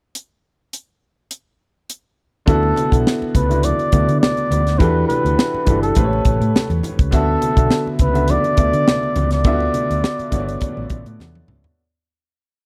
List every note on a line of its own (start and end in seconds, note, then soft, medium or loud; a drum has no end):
0.15 closed hi-hat medium
0.73 closed hi-hat soft
1.31 closed hi-hat soft
1.90 closed hi-hat medium
2.46 2.71 D2 medium
2.46 2.74 D3 medium
2.46 2.74 B3 medium
2.46 2.75 E4 medium
2.46 2.75 F#4 medium
2.46 3.02 A4 loud
2.46 kick loud
2.46 closed hi-hat medium
2.46 muted conga soft
2.46 low conga medium
2.63 muted conga soft
2.76 closed hi-hat medium
2.76 high conga medium
2.91 3.03 B1 medium
2.91 3.27 D3 medium
2.91 3.27 B3 medium
2.91 3.28 E4 medium
2.91 3.28 A4 medium
2.91 kick medium
2.91 closed hi-hat medium
3.07 snare medium
3.07 muted conga soft
3.22 muted fingered electric bass stroke soft
3.22 muted conga soft
3.35 3.70 C#2 medium
3.35 3.66 B4 medium
3.35 kick medium
3.35 closed hi-hat medium
3.35 high conga medium
3.49 3.76 D3 medium
3.49 3.77 B3 medium
3.49 3.77 E4 medium
3.49 3.78 F#4 medium
3.49 closed hi-hat soft
3.63 4.20 D5 loud
3.63 closed hi-hat medium
3.63 high conga soft
3.63 low conga medium
3.79 closed hi-hat soft
3.92 4.05 D2 medium
3.92 4.46 D3 medium
3.92 4.47 B3 medium
3.92 4.47 E4 medium
3.92 4.48 F#4 medium
3.92 kick medium
3.92 closed hi-hat medium
3.92 high conga medium
4.09 4.19 D3 medium
4.09 closed hi-hat soft
4.21 4.80 D5 medium
4.21 snare loud
4.21 muted conga soft
4.21 high conga medium
4.37 closed hi-hat soft
4.37 muted conga soft
4.51 4.80 D2 medium
4.51 closed hi-hat medium
4.51 low conga medium
4.67 snare soft
4.67 closed hi-hat soft
4.78 5.03 E2 loud
4.78 5.33 E3 medium
4.78 5.34 D4 medium
4.78 5.34 F#4 medium
4.78 5.34 G4 medium
4.78 5.35 A4 loud
4.78 5.07 B4 medium
4.78 kick loud
4.78 closed hi-hat medium
4.78 muted conga soft
4.78 low conga medium
5.08 5.78 B4 medium
5.08 closed hi-hat medium
5.08 high conga medium
5.25 5.35 D2 medium
5.25 closed hi-hat soft
5.39 snare loud
5.39 muted conga soft
5.54 muted fingered electric bass stroke soft
5.54 muted conga soft
5.65 5.90 G1 medium
5.65 5.95 E3 medium
5.65 5.96 D4 medium
5.65 5.96 F#4 medium
5.65 5.95 G4 medium
5.65 5.96 A4 medium
5.65 kick medium
5.65 closed hi-hat medium
5.65 high conga medium
5.82 6.79 A4 medium
5.82 closed hi-hat soft
5.95 6.20 A1 medium
5.95 6.89 A3 medium
5.95 6.90 G4 medium
5.95 6.90 B4 medium
5.95 6.04 C5 medium
5.95 kick medium
5.95 closed hi-hat medium
5.95 muted conga soft
5.95 high conga medium
5.95 low conga medium
6.04 6.94 C#5 medium
6.13 muted conga soft
6.25 6.38 A1 medium
6.25 kick medium
6.25 closed hi-hat medium
6.25 high conga medium
6.41 6.51 A2 medium
6.41 closed hi-hat soft
6.54 muted fingered electric bass stroke soft
6.54 snare medium
6.54 muted conga soft
6.54 high conga medium
6.70 6.80 E2 medium
6.70 closed hi-hat soft
6.70 muted conga soft
6.83 closed hi-hat medium
6.83 low conga medium
6.99 7.13 C#2 medium
6.99 kick medium
6.99 closed hi-hat soft
7.11 7.36 D2 loud
7.11 7.39 D3 medium
7.11 7.39 B3 medium
7.11 7.40 F#4 medium
7.11 7.96 A4 medium
7.11 7.40 E5 loud
7.11 kick medium
7.11 closed hi-hat medium
7.11 muted conga soft
7.11 low conga medium
7.42 closed hi-hat medium
7.42 high conga medium
7.56 7.68 B1 medium
7.56 7.92 D3 medium
7.56 7.92 B3 medium
7.56 7.93 F#4 medium
7.56 7.93 E5 medium
7.56 kick medium
7.56 closed hi-hat soft
7.71 snare medium
7.71 muted conga soft
7.87 muted fingered electric bass stroke soft
7.87 muted conga soft
7.99 8.35 C#2 medium
7.99 8.32 B4 medium
7.99 kick medium
7.99 closed hi-hat medium
7.99 high conga medium
8.13 8.41 D3 medium
8.13 8.41 B3 medium
8.13 8.42 F#4 medium
8.13 8.42 E5 medium
8.13 closed hi-hat soft
8.28 9.32 D5 loud
8.28 closed hi-hat medium
8.28 muted conga soft
8.28 high conga soft
8.28 low conga medium
8.44 closed hi-hat soft
8.44 muted conga soft
8.56 8.70 D2 medium
8.56 9.11 D3 medium
8.56 9.12 B3 medium
8.56 9.12 F#4 medium
8.56 9.12 E5 medium
8.56 kick medium
8.56 closed hi-hat medium
8.56 high conga medium
8.73 8.84 D3 medium
8.73 closed hi-hat soft
8.88 snare loud
8.88 muted conga soft
8.88 high conga medium
9.03 muted conga soft
9.16 9.45 C#2 medium
9.16 closed hi-hat medium
9.16 low conga medium
9.31 11.16 D5 medium
9.31 snare soft
9.31 closed hi-hat soft
9.44 9.68 D2 loud
9.44 9.99 D3 medium
9.44 9.99 B3 medium
9.44 9.53 F4 medium
9.44 10.00 E5 loud
9.44 kick loud
9.44 closed hi-hat medium
9.44 muted conga soft
9.44 low conga medium
9.52 10.03 F#4 medium
9.60 muted conga soft
9.74 closed hi-hat medium
9.74 high conga medium
9.90 10.01 D2 medium
9.90 closed hi-hat medium
10.04 snare medium
10.19 muted fingered electric bass stroke soft
10.19 closed hi-hat soft
10.19 muted conga soft
10.30 10.55 G1 loud
10.30 11.04 D3 medium
10.30 11.05 B3 medium
10.30 11.05 F#4 medium
10.30 10.40 C#5 medium
10.30 kick medium
10.30 closed hi-hat medium
10.30 high conga medium
10.39 11.09 D5 medium
10.49 closed hi-hat soft
10.61 kick medium
10.61 closed hi-hat medium
10.61 high conga soft
10.61 low conga medium
10.77 10.88 A1 medium
10.77 muted conga soft
10.90 11.03 A1 medium
10.90 kick medium
10.90 closed hi-hat medium
10.90 high conga medium
11.06 11.17 A2 medium
11.06 closed hi-hat soft
11.19 11.43 E2 medium
11.19 snare medium
11.19 muted conga soft
11.19 high conga medium
11.35 high tom medium
11.35 muted conga soft
11.48 11.61 C#2 medium
11.48 mid tom medium
11.48 low conga medium
11.64 floor tom medium